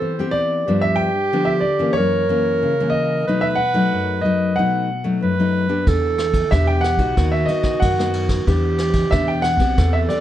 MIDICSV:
0, 0, Header, 1, 6, 480
1, 0, Start_track
1, 0, Key_signature, 1, "minor"
1, 0, Tempo, 650759
1, 496, Time_signature, 4, 2, 24, 8
1, 7526, End_track
2, 0, Start_track
2, 0, Title_t, "Grand piano"
2, 0, Program_c, 0, 0
2, 0, Note_on_c, 0, 72, 95
2, 231, Note_on_c, 0, 74, 92
2, 270, Note_off_c, 0, 72, 0
2, 601, Note_on_c, 0, 76, 91
2, 614, Note_off_c, 0, 74, 0
2, 705, Note_on_c, 0, 79, 98
2, 732, Note_off_c, 0, 76, 0
2, 1070, Note_on_c, 0, 76, 76
2, 1091, Note_off_c, 0, 79, 0
2, 1107, Note_off_c, 0, 76, 0
2, 1183, Note_on_c, 0, 74, 80
2, 1423, Note_on_c, 0, 73, 98
2, 1446, Note_off_c, 0, 74, 0
2, 2129, Note_off_c, 0, 73, 0
2, 2137, Note_on_c, 0, 75, 84
2, 2489, Note_off_c, 0, 75, 0
2, 2516, Note_on_c, 0, 76, 87
2, 2553, Note_off_c, 0, 76, 0
2, 2622, Note_on_c, 0, 78, 90
2, 3088, Note_off_c, 0, 78, 0
2, 3108, Note_on_c, 0, 75, 77
2, 3361, Note_on_c, 0, 78, 80
2, 3368, Note_off_c, 0, 75, 0
2, 3817, Note_off_c, 0, 78, 0
2, 4802, Note_on_c, 0, 76, 93
2, 4918, Note_off_c, 0, 76, 0
2, 4923, Note_on_c, 0, 79, 90
2, 5023, Note_on_c, 0, 78, 96
2, 5051, Note_off_c, 0, 79, 0
2, 5396, Note_on_c, 0, 76, 80
2, 5409, Note_off_c, 0, 78, 0
2, 5499, Note_on_c, 0, 75, 81
2, 5516, Note_off_c, 0, 76, 0
2, 5751, Note_on_c, 0, 78, 85
2, 5764, Note_off_c, 0, 75, 0
2, 6096, Note_off_c, 0, 78, 0
2, 6718, Note_on_c, 0, 76, 90
2, 6845, Note_on_c, 0, 79, 78
2, 6850, Note_off_c, 0, 76, 0
2, 6950, Note_on_c, 0, 78, 102
2, 6960, Note_off_c, 0, 79, 0
2, 7325, Note_on_c, 0, 76, 83
2, 7333, Note_off_c, 0, 78, 0
2, 7362, Note_off_c, 0, 76, 0
2, 7440, Note_on_c, 0, 74, 84
2, 7526, Note_off_c, 0, 74, 0
2, 7526, End_track
3, 0, Start_track
3, 0, Title_t, "Clarinet"
3, 0, Program_c, 1, 71
3, 0, Note_on_c, 1, 69, 92
3, 270, Note_off_c, 1, 69, 0
3, 488, Note_on_c, 1, 67, 104
3, 1454, Note_on_c, 1, 70, 102
3, 1465, Note_off_c, 1, 67, 0
3, 2410, Note_off_c, 1, 70, 0
3, 2415, Note_on_c, 1, 71, 123
3, 3625, Note_off_c, 1, 71, 0
3, 3853, Note_on_c, 1, 71, 104
3, 4336, Note_on_c, 1, 69, 104
3, 4347, Note_off_c, 1, 71, 0
3, 4812, Note_on_c, 1, 67, 94
3, 4824, Note_off_c, 1, 69, 0
3, 5282, Note_off_c, 1, 67, 0
3, 5287, Note_on_c, 1, 66, 92
3, 6221, Note_off_c, 1, 66, 0
3, 6253, Note_on_c, 1, 67, 105
3, 6985, Note_off_c, 1, 67, 0
3, 7211, Note_on_c, 1, 69, 93
3, 7526, Note_off_c, 1, 69, 0
3, 7526, End_track
4, 0, Start_track
4, 0, Title_t, "Nylon-string guitar"
4, 0, Program_c, 2, 24
4, 0, Note_on_c, 2, 60, 57
4, 0, Note_on_c, 2, 67, 55
4, 12, Note_on_c, 2, 52, 54
4, 94, Note_off_c, 2, 60, 0
4, 97, Note_off_c, 2, 67, 0
4, 140, Note_on_c, 2, 59, 58
4, 143, Note_on_c, 2, 60, 62
4, 148, Note_on_c, 2, 67, 64
4, 460, Note_off_c, 2, 59, 0
4, 460, Note_off_c, 2, 60, 0
4, 461, Note_off_c, 2, 67, 0
4, 469, Note_off_c, 2, 52, 0
4, 498, Note_on_c, 2, 43, 58
4, 500, Note_on_c, 2, 53, 57
4, 504, Note_on_c, 2, 59, 60
4, 505, Note_on_c, 2, 62, 63
4, 805, Note_off_c, 2, 53, 0
4, 807, Note_off_c, 2, 59, 0
4, 809, Note_off_c, 2, 62, 0
4, 953, Note_off_c, 2, 43, 0
4, 979, Note_on_c, 2, 50, 57
4, 981, Note_on_c, 2, 53, 59
4, 983, Note_on_c, 2, 59, 60
4, 985, Note_on_c, 2, 62, 59
4, 1202, Note_off_c, 2, 53, 0
4, 1203, Note_off_c, 2, 59, 0
4, 1205, Note_off_c, 2, 62, 0
4, 1321, Note_on_c, 2, 52, 58
4, 1326, Note_on_c, 2, 58, 56
4, 1328, Note_on_c, 2, 61, 61
4, 1433, Note_off_c, 2, 50, 0
4, 1458, Note_on_c, 2, 42, 60
4, 1649, Note_off_c, 2, 52, 0
4, 1651, Note_off_c, 2, 58, 0
4, 1653, Note_off_c, 2, 61, 0
4, 1690, Note_on_c, 2, 52, 50
4, 1696, Note_on_c, 2, 58, 55
4, 1697, Note_on_c, 2, 61, 57
4, 1912, Note_off_c, 2, 42, 0
4, 1937, Note_on_c, 2, 49, 60
4, 2014, Note_off_c, 2, 52, 0
4, 2016, Note_off_c, 2, 58, 0
4, 2017, Note_off_c, 2, 61, 0
4, 2067, Note_on_c, 2, 52, 58
4, 2071, Note_on_c, 2, 58, 55
4, 2071, Note_on_c, 2, 61, 64
4, 2382, Note_off_c, 2, 52, 0
4, 2383, Note_off_c, 2, 58, 0
4, 2384, Note_off_c, 2, 61, 0
4, 2391, Note_off_c, 2, 49, 0
4, 2418, Note_on_c, 2, 47, 58
4, 2422, Note_on_c, 2, 54, 54
4, 2423, Note_on_c, 2, 57, 54
4, 2428, Note_on_c, 2, 63, 71
4, 2641, Note_off_c, 2, 54, 0
4, 2644, Note_off_c, 2, 57, 0
4, 2645, Note_off_c, 2, 63, 0
4, 2759, Note_on_c, 2, 54, 65
4, 2762, Note_on_c, 2, 57, 61
4, 2766, Note_on_c, 2, 63, 66
4, 2872, Note_off_c, 2, 47, 0
4, 2897, Note_on_c, 2, 42, 57
4, 3088, Note_off_c, 2, 54, 0
4, 3089, Note_off_c, 2, 57, 0
4, 3091, Note_off_c, 2, 63, 0
4, 3134, Note_on_c, 2, 54, 51
4, 3139, Note_on_c, 2, 57, 47
4, 3141, Note_on_c, 2, 63, 63
4, 3336, Note_off_c, 2, 54, 0
4, 3337, Note_off_c, 2, 57, 0
4, 3337, Note_off_c, 2, 63, 0
4, 3351, Note_off_c, 2, 42, 0
4, 3380, Note_on_c, 2, 47, 58
4, 3381, Note_on_c, 2, 54, 60
4, 3385, Note_on_c, 2, 63, 57
4, 3386, Note_on_c, 2, 57, 59
4, 3602, Note_off_c, 2, 54, 0
4, 3603, Note_off_c, 2, 57, 0
4, 3604, Note_off_c, 2, 63, 0
4, 3718, Note_on_c, 2, 54, 56
4, 3721, Note_on_c, 2, 57, 68
4, 3727, Note_on_c, 2, 63, 61
4, 3833, Note_off_c, 2, 47, 0
4, 3854, Note_on_c, 2, 42, 55
4, 3928, Note_off_c, 2, 54, 0
4, 3928, Note_off_c, 2, 57, 0
4, 3929, Note_off_c, 2, 63, 0
4, 3978, Note_on_c, 2, 54, 62
4, 3982, Note_on_c, 2, 57, 54
4, 3986, Note_on_c, 2, 63, 63
4, 4177, Note_off_c, 2, 54, 0
4, 4179, Note_off_c, 2, 57, 0
4, 4181, Note_off_c, 2, 63, 0
4, 4197, Note_on_c, 2, 59, 59
4, 4200, Note_on_c, 2, 62, 62
4, 4202, Note_on_c, 2, 67, 67
4, 4309, Note_off_c, 2, 42, 0
4, 4332, Note_on_c, 2, 52, 57
4, 4646, Note_off_c, 2, 59, 0
4, 4648, Note_off_c, 2, 62, 0
4, 4648, Note_off_c, 2, 67, 0
4, 4788, Note_off_c, 2, 52, 0
4, 4811, Note_on_c, 2, 47, 59
4, 4814, Note_on_c, 2, 59, 59
4, 4817, Note_on_c, 2, 62, 60
4, 4818, Note_on_c, 2, 67, 68
4, 5038, Note_off_c, 2, 59, 0
4, 5038, Note_off_c, 2, 62, 0
4, 5041, Note_off_c, 2, 67, 0
4, 5152, Note_on_c, 2, 59, 64
4, 5157, Note_on_c, 2, 63, 65
4, 5160, Note_on_c, 2, 66, 71
4, 5269, Note_off_c, 2, 47, 0
4, 5295, Note_on_c, 2, 51, 54
4, 5484, Note_off_c, 2, 59, 0
4, 5486, Note_off_c, 2, 63, 0
4, 5488, Note_off_c, 2, 66, 0
4, 5523, Note_on_c, 2, 59, 57
4, 5527, Note_on_c, 2, 63, 50
4, 5529, Note_on_c, 2, 66, 62
4, 5750, Note_off_c, 2, 51, 0
4, 5753, Note_off_c, 2, 59, 0
4, 5755, Note_off_c, 2, 63, 0
4, 5756, Note_off_c, 2, 66, 0
4, 5772, Note_on_c, 2, 51, 57
4, 5899, Note_on_c, 2, 59, 60
4, 5899, Note_on_c, 2, 63, 59
4, 5901, Note_on_c, 2, 66, 67
4, 6217, Note_off_c, 2, 63, 0
4, 6218, Note_off_c, 2, 59, 0
4, 6219, Note_off_c, 2, 66, 0
4, 6229, Note_off_c, 2, 51, 0
4, 6249, Note_on_c, 2, 52, 63
4, 6249, Note_on_c, 2, 59, 61
4, 6252, Note_on_c, 2, 62, 57
4, 6257, Note_on_c, 2, 67, 72
4, 6692, Note_off_c, 2, 59, 0
4, 6695, Note_off_c, 2, 62, 0
4, 6696, Note_off_c, 2, 67, 0
4, 6708, Note_off_c, 2, 52, 0
4, 6732, Note_on_c, 2, 47, 59
4, 6735, Note_on_c, 2, 59, 64
4, 6738, Note_on_c, 2, 62, 58
4, 6741, Note_on_c, 2, 67, 68
4, 7055, Note_off_c, 2, 59, 0
4, 7058, Note_off_c, 2, 62, 0
4, 7059, Note_off_c, 2, 67, 0
4, 7073, Note_on_c, 2, 59, 61
4, 7077, Note_on_c, 2, 60, 61
4, 7080, Note_on_c, 2, 67, 63
4, 7190, Note_off_c, 2, 47, 0
4, 7213, Note_on_c, 2, 52, 61
4, 7405, Note_off_c, 2, 59, 0
4, 7408, Note_off_c, 2, 60, 0
4, 7408, Note_off_c, 2, 67, 0
4, 7442, Note_on_c, 2, 59, 58
4, 7447, Note_on_c, 2, 60, 52
4, 7452, Note_on_c, 2, 67, 57
4, 7526, Note_off_c, 2, 52, 0
4, 7526, Note_off_c, 2, 59, 0
4, 7526, Note_off_c, 2, 60, 0
4, 7526, Note_off_c, 2, 67, 0
4, 7526, End_track
5, 0, Start_track
5, 0, Title_t, "Upright bass"
5, 0, Program_c, 3, 32
5, 4329, Note_on_c, 3, 40, 87
5, 4739, Note_off_c, 3, 40, 0
5, 4812, Note_on_c, 3, 40, 90
5, 5119, Note_off_c, 3, 40, 0
5, 5138, Note_on_c, 3, 35, 73
5, 5255, Note_off_c, 3, 35, 0
5, 5290, Note_on_c, 3, 39, 100
5, 5495, Note_off_c, 3, 39, 0
5, 5769, Note_on_c, 3, 42, 89
5, 6179, Note_off_c, 3, 42, 0
5, 6250, Note_on_c, 3, 40, 102
5, 6660, Note_off_c, 3, 40, 0
5, 6730, Note_on_c, 3, 40, 90
5, 7038, Note_off_c, 3, 40, 0
5, 7060, Note_on_c, 3, 35, 83
5, 7176, Note_off_c, 3, 35, 0
5, 7213, Note_on_c, 3, 40, 109
5, 7417, Note_off_c, 3, 40, 0
5, 7526, End_track
6, 0, Start_track
6, 0, Title_t, "Drums"
6, 4330, Note_on_c, 9, 36, 69
6, 4330, Note_on_c, 9, 51, 45
6, 4403, Note_off_c, 9, 51, 0
6, 4404, Note_off_c, 9, 36, 0
6, 4561, Note_on_c, 9, 37, 67
6, 4561, Note_on_c, 9, 51, 48
6, 4635, Note_off_c, 9, 37, 0
6, 4635, Note_off_c, 9, 51, 0
6, 4674, Note_on_c, 9, 36, 68
6, 4675, Note_on_c, 9, 51, 47
6, 4747, Note_off_c, 9, 36, 0
6, 4748, Note_off_c, 9, 51, 0
6, 4811, Note_on_c, 9, 36, 83
6, 4813, Note_on_c, 9, 37, 72
6, 4813, Note_on_c, 9, 51, 48
6, 4885, Note_off_c, 9, 36, 0
6, 4886, Note_off_c, 9, 37, 0
6, 4886, Note_off_c, 9, 51, 0
6, 5046, Note_on_c, 9, 37, 72
6, 5046, Note_on_c, 9, 51, 48
6, 5119, Note_off_c, 9, 37, 0
6, 5119, Note_off_c, 9, 51, 0
6, 5153, Note_on_c, 9, 51, 45
6, 5154, Note_on_c, 9, 36, 66
6, 5227, Note_off_c, 9, 36, 0
6, 5227, Note_off_c, 9, 51, 0
6, 5290, Note_on_c, 9, 36, 66
6, 5291, Note_on_c, 9, 37, 62
6, 5291, Note_on_c, 9, 51, 49
6, 5364, Note_off_c, 9, 36, 0
6, 5365, Note_off_c, 9, 37, 0
6, 5365, Note_off_c, 9, 51, 0
6, 5520, Note_on_c, 9, 51, 48
6, 5593, Note_off_c, 9, 51, 0
6, 5630, Note_on_c, 9, 37, 66
6, 5630, Note_on_c, 9, 51, 48
6, 5633, Note_on_c, 9, 36, 64
6, 5703, Note_off_c, 9, 37, 0
6, 5703, Note_off_c, 9, 51, 0
6, 5707, Note_off_c, 9, 36, 0
6, 5768, Note_on_c, 9, 51, 54
6, 5770, Note_on_c, 9, 36, 82
6, 5842, Note_off_c, 9, 51, 0
6, 5843, Note_off_c, 9, 36, 0
6, 5895, Note_on_c, 9, 37, 62
6, 5969, Note_off_c, 9, 37, 0
6, 6000, Note_on_c, 9, 51, 50
6, 6074, Note_off_c, 9, 51, 0
6, 6115, Note_on_c, 9, 36, 67
6, 6115, Note_on_c, 9, 37, 67
6, 6115, Note_on_c, 9, 51, 52
6, 6189, Note_off_c, 9, 36, 0
6, 6189, Note_off_c, 9, 37, 0
6, 6189, Note_off_c, 9, 51, 0
6, 6251, Note_on_c, 9, 36, 62
6, 6252, Note_on_c, 9, 51, 48
6, 6325, Note_off_c, 9, 36, 0
6, 6326, Note_off_c, 9, 51, 0
6, 6479, Note_on_c, 9, 37, 66
6, 6479, Note_on_c, 9, 51, 53
6, 6553, Note_off_c, 9, 37, 0
6, 6553, Note_off_c, 9, 51, 0
6, 6589, Note_on_c, 9, 51, 52
6, 6594, Note_on_c, 9, 36, 73
6, 6662, Note_off_c, 9, 51, 0
6, 6667, Note_off_c, 9, 36, 0
6, 6727, Note_on_c, 9, 37, 67
6, 6727, Note_on_c, 9, 51, 47
6, 6731, Note_on_c, 9, 36, 84
6, 6801, Note_off_c, 9, 37, 0
6, 6801, Note_off_c, 9, 51, 0
6, 6805, Note_off_c, 9, 36, 0
6, 6961, Note_on_c, 9, 37, 69
6, 6961, Note_on_c, 9, 51, 54
6, 7035, Note_off_c, 9, 37, 0
6, 7035, Note_off_c, 9, 51, 0
6, 7077, Note_on_c, 9, 36, 67
6, 7078, Note_on_c, 9, 51, 53
6, 7151, Note_off_c, 9, 36, 0
6, 7152, Note_off_c, 9, 51, 0
6, 7214, Note_on_c, 9, 36, 67
6, 7214, Note_on_c, 9, 37, 67
6, 7214, Note_on_c, 9, 51, 45
6, 7288, Note_off_c, 9, 36, 0
6, 7288, Note_off_c, 9, 37, 0
6, 7288, Note_off_c, 9, 51, 0
6, 7448, Note_on_c, 9, 51, 48
6, 7521, Note_off_c, 9, 51, 0
6, 7526, End_track
0, 0, End_of_file